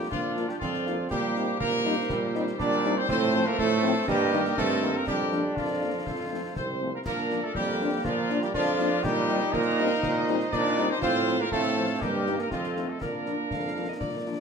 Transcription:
0.11 tuba A#2, euphonium F3, trombone section D4, trumpet section F4, woodwind section F4 D5, concert bass drum, snare
0.37 french horn section A#3 D4 F4, snare
0.48 euphonium G3, trumpet section G4, snare
0.59 tuba F2, euphonium F3, trombone section C4, trumpet section F4, woodwind section F4 D5, concert bass drum, snare
0.74 snare
0.86 french horn section A#3 D4 F4, snare
1.10 tuba A#2, euphonium G3, trombone section A#3, woodwind section G4 C5, trumpet section G4, concert bass drum, snare, crash
1.36 french horn section G3 C4 D#4, snare
1.59 tuba A#2, euphonium A#3, woodwind section G4 C5, trumpet section A#4, concert bass drum, snare
1.85 french horn section G3 C4 D#4
2.09 tuba A#2, trombone section G3, concert bass drum, snare
2.34 french horn section G3 C4 D#4, snare
2.47 snare
2.58 tuba A#2, trombone section G3, euphonium D4, trumpet section D5, concert bass drum, snare
2.72 snare
2.84 french horn section G3 C4 D#4, snare
2.97 euphonium C4, trumpet section C5
3.08 tuba A2, trombone section A3, euphonium C4, woodwind section F4 C5, trumpet section C5, concert bass drum, snare, crash
3.34 french horn section F3 A3 C4, snare
3.46 euphonium A#3, trumpet section A#4
3.58 tuba A2, euphonium A3, woodwind section F4 C5, trumpet section A4, concert bass drum, snare
3.83 french horn section F3 A3 C4
4.07 tuba G2, euphonium G3, trombone section A#3, trumpet section G4, woodwind section A#4 D#5, concert bass drum, snare
4.32 french horn section D#3 A#3 D#4, snare
4.45 snare
4.57 tuba G2, euphonium A3, trombone section C4, trumpet section A4, concert bass drum, snare
4.71 snare
4.82 french horn section D#3 A#3 D#4, snare
4.94 euphonium A#3, trumpet section A#4
5.07 tuba F2, euphonium G3, trombone section D4, trumpet section G4, woodwind section A#4 D5, concert bass drum, snare, crash
5.32 french horn section F3 A#3 D4, snare
5.56 tuba F2, euphonium F3, trumpet section F4, woodwind section A#4 D5, concert bass drum, snare
5.81 french horn section F3 A#3 D4
6.07 tuba F2, woodwind section A4 C5, concert bass drum, snare
6.31 french horn section F3 A3 C4
6.56 tuba C2, euphonium C4, woodwind section A4 C5, trumpet section C5, concert bass drum, snare
6.81 french horn section F3 A3 C4
6.94 euphonium A#3, trumpet section A#4
7.05 tuba A#2, euphonium A#3, trombone section D4, trumpet section A#4, woodwind section A#4 D5, concert bass drum, snare, crash
7.30 french horn section F3 A#3 D4, snare
7.44 euphonium A3, trumpet section A4
7.54 tuba F2, euphonium G3, trombone section A#3, trumpet section G4, concert bass drum, snare
7.80 french horn section F3 A#3 D4
8.05 tuba A#2, euphonium F3, trumpet section F4, woodwind section A#4 D5, concert bass drum, snare
8.30 french horn section F3 A#3 D4, snare
8.42 euphonium G3, trumpet section G4, snare
8.54 tuba F2, euphonium F3, trombone section D4, trumpet section F4, woodwind section A#4 D5, concert bass drum, snare
8.67 snare
8.79 french horn section F3 A#3 D4, snare
9.04 tuba A#2, euphonium G3, trombone section D#4, trumpet section G4, woodwind section C5 D#5, concert bass drum, snare, crash
9.29 french horn section G3 C4 D#4, snare
9.53 tuba A#2, euphonium A#3, trumpet section A#4, woodwind section C5 D#5, concert bass drum, snare
9.79 french horn section G3 C4 D#4
10.03 tuba A#2, concert bass drum, snare
10.28 french horn section G3 C4 D#4, snare
10.40 snare
10.52 tuba A#2, euphonium D4, trumpet section D5, concert bass drum, snare
10.65 snare
10.77 french horn section G3 C4 D#4, snare
10.90 euphonium C4, trumpet section C5
11.01 tuba A2, euphonium C4, trombone section F4, trumpet section C5, woodwind section C5 F5, concert bass drum, snare, crash
11.27 french horn section F3 C4, snare
11.40 euphonium A#3, trumpet section A#4
11.52 tuba A2, euphonium A3, trombone section C4, trumpet section A4, woodwind section C5 F5, concert bass drum, snare
11.77 french horn section F3 C4
12.01 tuba G2, euphonium G3, trombone section A#3, trumpet section G4, woodwind section A#4 D#5, concert bass drum, snare
12.26 french horn section G3 A#3 D#4, snare
12.39 euphonium A#3, trumpet section A#4, snare
12.51 tuba F2, euphonium F3, trombone section C4, trumpet section F4, woodwind section A4 D#5, concert bass drum, snare
12.64 snare
12.77 french horn section A3 C4 D#4, snare
12.88 euphonium A3, trumpet section A4
13.01 tuba A#2, euphonium A#3, trombone section D4, woodwind section A#4 D5, trumpet section A#4, concert bass drum, snare, crash
13.26 french horn section F3 A#3 D4, snare
13.51 tuba F2, woodwind section F5, concert bass drum, snare
13.76 french horn section F3 A#3 D4
13.89 woodwind section D#5
14.00 tuba A#2, woodwind section D5, concert bass drum, snare
14.26 french horn section F3 A#3 D4

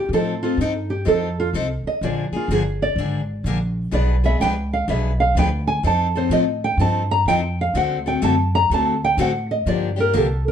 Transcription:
Already playing: nylon-string guitar G4
0.09 upright bass A2
0.13 steel-string acoustic guitar F3 C4 D#4 A4, nylon-string guitar A4
0.43 steel-string acoustic guitar C4 D#4 A4, nylon-string guitar F4
0.57 upright bass G2, steel-string acoustic guitar F3 C4 D#4, nylon-string guitar D#4
0.62 steel-string acoustic guitar A4
0.90 nylon-string guitar G4
1.05 upright bass F2, steel-string acoustic guitar F3 C4 D#4 A4, nylon-string guitar A4
1.40 nylon-string guitar F4
1.53 upright bass C2, steel-string acoustic guitar F3 C4 D#4 A4
1.83 nylon-string guitar D#5, muted upright bass stroke
2.01 upright bass A#1, steel-string acoustic guitar D3 F3 A#3 D4 G#4, nylon-string guitar D5
2.31 steel-string acoustic guitar A#3 D4 G#4, muted upright bass stroke
2.36 nylon-string guitar F4
2.48 upright bass G1, steel-string acoustic guitar D3 F3 A#3 D4 G#4
2.52 nylon-string guitar G#4
2.82 nylon-string guitar D5
2.96 upright bass G#1, steel-string acoustic guitar D3 F3 A#3 D4 G#4
3.44 upright bass A#1, steel-string acoustic guitar D3 F3 A#3 D4 G#4
3.91 upright bass B1, steel-string acoustic guitar B2 F3 B3 D4 G#4 B4, nylon-string guitar D5
4.24 steel-string acoustic guitar B3 D4 G#4 B4, nylon-string guitar E5
4.40 upright bass C#2, steel-string acoustic guitar B2 F3 B3 D4 G#4 B4, nylon-string guitar G5
4.73 nylon-string guitar F5
4.88 upright bass B1, steel-string acoustic guitar B2 F3 B3 D4 G#4 B4, nylon-string guitar E5
5.20 nylon-string guitar F5
5.35 upright bass D2, steel-string acoustic guitar B2 F3 B3 D4 G#4 B4, nylon-string guitar G5
5.67 nylon-string guitar G#5
5.83 upright bass F2, steel-string acoustic guitar F3 C4 D#4 A4, nylon-string guitar A5
6.15 steel-string acoustic guitar C4 D#4 A4, nylon-string guitar C5
6.29 upright bass A2, steel-string acoustic guitar F3 C4 D#4 A4, nylon-string guitar D#5
6.64 nylon-string guitar G5
6.77 upright bass G2, steel-string acoustic guitar F3 C4 D#4 A4, nylon-string guitar A5
7.11 nylon-string guitar A#5
7.26 upright bass F2, steel-string acoustic guitar F3 C4 D#4, nylon-string guitar G5
7.30 steel-string acoustic guitar A4
7.61 nylon-string guitar F5
7.74 upright bass D2, steel-string acoustic guitar D3 A3 C4 F#4 A4, nylon-string guitar F#5
8.06 steel-string acoustic guitar C4 F#4 A4, nylon-string guitar G5
8.22 upright bass F#2, steel-string acoustic guitar D3 A3 C4 F#4 A4, nylon-string guitar A5
8.55 nylon-string guitar A#5
8.70 upright bass D2, steel-string acoustic guitar D3 A3 C4 F#4 A4
8.74 nylon-string guitar A5
9.04 nylon-string guitar G5
9.17 upright bass A2, steel-string acoustic guitar D3 A3 C4 F#4 A4, nylon-string guitar F#5
9.51 nylon-string guitar D#5
9.66 upright bass G2, steel-string acoustic guitar D3 F3 A#3 D4 G4, nylon-string guitar D5
9.96 steel-string acoustic guitar A#3 D4 G4
10.00 nylon-string guitar A#4
10.13 upright bass C2, steel-string acoustic guitar D3 F3 A#3 D4 G4, nylon-string guitar A4
10.48 nylon-string guitar A#4

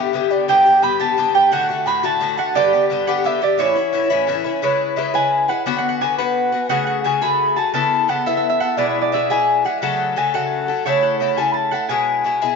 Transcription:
Already playing: bouzouki G2 D3 B3 G4, flute E5
0.13 bouzouki G2 D3 B3 G4
0.30 bouzouki D3 B3 G4, flute D5
0.48 bouzouki G2 D3 B3 G4, flute G5, harp G5
0.65 bouzouki D3 B3 G4
0.82 bouzouki G2 D3 B3 G4, flute B5, harp B5
0.99 bouzouki G2 D3 B3 G4, flute A5, harp A5
1.17 bouzouki G2 D3 B3 G4
1.34 bouzouki D3 B3 G4, flute G5, harp G5
1.52 bouzouki A2 D3 A3 F#4, harp F#5, flute F#5
1.69 bouzouki D3 A3 F#4
1.86 bouzouki A2 D3 A3 F#4, flute B5, harp B5
2.03 bouzouki A2 D3 A3 F#4, flute A5, harp A5
2.20 bouzouki A2 D3 A3 F#4
2.37 bouzouki D3 A3 F#4, flute F#5, harp F#5
2.55 bouzouki G2 D3 B3 G4, harp D5, flute D5
2.73 bouzouki D3 B3 G4
2.90 bouzouki G2 D3 B3 G4
3.07 bouzouki G2 D3 B3 G4, harp F#5, flute F#5
3.24 bouzouki G2 D3 B3 G4, harp E5, flute E5
3.41 bouzouki D3 B3 G4, harp D5, flute D5
3.58 bouzouki A2 E3 C#4 E4, harp C#5, flute C#5
3.75 bouzouki E3 C#4 E4
3.93 bouzouki A2 E3 C#4 E4
4.10 bouzouki A2 E3 C#4 E4
4.27 bouzouki A2 E3 C#4 E4
4.44 bouzouki E3 C#4 E4
4.62 bouzouki C#3 G#3 E4 B4, flute C#5, harp C#5
4.96 bouzouki C#3 G#3 E4 B4, flute E5
5.14 bouzouki C#3 G#3 E4 B4, flute G#5, harp G#5
5.48 bouzouki G#3 E4 B4, flute F#5, harp F#5
5.66 bouzouki D3 B3 F#4 B4, flute F#5, harp F#5
5.78 harp F#5
5.89 harp F#5
6.00 bouzouki D3 B3 F#4 B4, flute G#5, harp G#5
6.18 bouzouki D3 B3 F#4 B4, flute F#5, harp F#5
6.52 bouzouki B3 F#4 B4
6.69 bouzouki C#3 A3 F#4 G#4, harp F#5, flute F#5
6.87 harp F#5
7.04 bouzouki C#3 A3 F#4 G#4, flute G#5, harp G#5
7.21 bouzouki C#3 A3 F#4 G#4, flute B5, harp B5
7.56 bouzouki A3 F#4 G#4, harp A5, flute A5
7.74 bouzouki C#3 B3 E4 A4, harp A5, flute A5
8.08 bouzouki C#3 B3 E4 A4, harp F#5, flute F#5
8.26 bouzouki C#3 B3 E4 A4, harp E5, flute E5
8.37 harp E5
8.49 harp E5
8.60 bouzouki B3 E4 A4, flute F#5, harp F#5
8.76 bouzouki B2 G#3 E4 G#4, flute D5, harp D5
8.89 flute D5
9.01 flute D5, harp D5
9.12 bouzouki B2 G#3 E4 G#4, flute E5, harp E5
9.30 bouzouki B2 G#3 E4 G#4, flute G#5, harp G#5
9.65 bouzouki G#3 E4 G#4, flute F#5, harp F#5
9.81 bouzouki C#3 F#3 A3 A4, flute F#5, harp F#5
10.16 bouzouki C#3 F#3 A3 A4, flute G#5, harp G#5
10.34 bouzouki C#3 F#3 A3 A4, harp F#5, flute F#5
10.68 bouzouki F#3 A3 A4
10.85 bouzouki C#3 A3 E4 A4, harp C#5, flute C#5
11.03 harp F#5
11.20 bouzouki C#3 A3 E4 A4
11.37 bouzouki C#3 A3 E4 A4, harp G#5, flute G#5
11.51 harp A5, flute B5
11.55 flute A5
11.71 bouzouki A3 E4 A4, harp F#5, flute F#5
11.89 bouzouki B2 G#3 E4 G#4, harp G#5, flute G#5
12.24 bouzouki B2 G#3 E4 G#4
12.42 bouzouki B2 G#3 E4 G#4

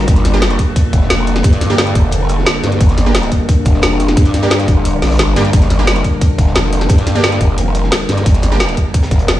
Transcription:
Already playing: synth drone D3 G3 A#3
0.07 wobble bass G1, synth drone A4, kick, closed hi-hat
0.16 snare, closed hi-hat
0.25 snare, closed hi-hat
0.33 synth stab A#3 D4 G4
0.42 snare, closed hi-hat
0.50 snare, closed hi-hat
0.59 kick, closed hi-hat
0.76 kick, closed hi-hat
0.93 wobble bass F1, kick, closed hi-hat
1.01 snare
1.10 snare, closed hi-hat
1.19 snare
1.27 closed hi-hat
1.36 snare, closed hi-hat
1.43 wobble bass G2, kick, closed hi-hat
1.53 snare, closed hi-hat
1.61 snare, closed hi-hat
1.70 synth stab A#3 D4 G4
1.78 snare, closed hi-hat
1.87 closed hi-hat
1.95 wobble bass F1, kick, closed hi-hat
2.11 closed hi-hat
2.29 closed hi-hat
2.38 snare
2.46 snare, closed hi-hat
2.63 wobble bass G2, snare, closed hi-hat
2.72 snare, closed hi-hat
2.80 wobble bass G1, synth drone D4, kick, closed hi-hat
2.89 snare, closed hi-hat
2.97 snare, closed hi-hat
3.06 synth stab A#3 D4 G4
3.14 snare, closed hi-hat
3.22 snare, closed hi-hat
3.32 kick, closed hi-hat
3.49 kick, closed hi-hat
3.65 wobble bass F1, kick, closed hi-hat
3.74 snare
3.82 snare, closed hi-hat
3.92 snare
4.00 closed hi-hat
4.08 snare, closed hi-hat
4.17 wobble bass G2, kick, closed hi-hat
4.25 snare, closed hi-hat
4.34 snare, closed hi-hat
4.43 synth stab A#3 D4 G4
4.50 snare, closed hi-hat
4.60 closed hi-hat
4.68 wobble bass F1, kick, closed hi-hat
4.85 closed hi-hat
5.02 wobble bass A#1, snare, closed hi-hat
5.06 snare, closed hi-hat
5.10 snare, closed hi-hat
5.14 snare, closed hi-hat
5.19 wobble bass G1, snare, closed hi-hat
5.36 wobble bass G2, synth stab A#3 D4 G4, snare, closed hi-hat
5.45 closed hi-hat
5.53 wobble bass G1, synth drone A4, kick, closed hi-hat
5.61 snare, closed hi-hat
5.70 snare, closed hi-hat
5.79 synth stab A#3 D4 G4
5.87 snare, closed hi-hat
5.96 snare, closed hi-hat
6.04 kick, closed hi-hat
6.21 kick, closed hi-hat
6.38 wobble bass F1, kick, closed hi-hat
6.47 snare
6.55 snare, closed hi-hat
6.64 snare
6.73 closed hi-hat
6.81 snare, closed hi-hat
6.89 wobble bass G2, kick, closed hi-hat
6.98 snare, closed hi-hat
7.07 snare, closed hi-hat
7.15 synth stab A#3 D4 G4
7.23 snare, closed hi-hat
7.32 closed hi-hat
7.41 wobble bass F1, kick, closed hi-hat
7.58 closed hi-hat
7.75 closed hi-hat
7.83 snare
7.92 snare, closed hi-hat
8.09 wobble bass G2, snare, closed hi-hat
8.18 snare, closed hi-hat
8.26 wobble bass G1, synth drone A#4, kick, closed hi-hat
8.34 snare, closed hi-hat
8.42 snare, closed hi-hat
8.52 synth stab A#3 D4 G4
8.59 snare, closed hi-hat
8.69 snare, closed hi-hat
8.77 kick, closed hi-hat
8.94 kick, closed hi-hat
9.03 snare, closed hi-hat
9.11 wobble bass F1, kick, snare, closed hi-hat
9.19 closed hi-hat
9.28 snare, closed hi-hat

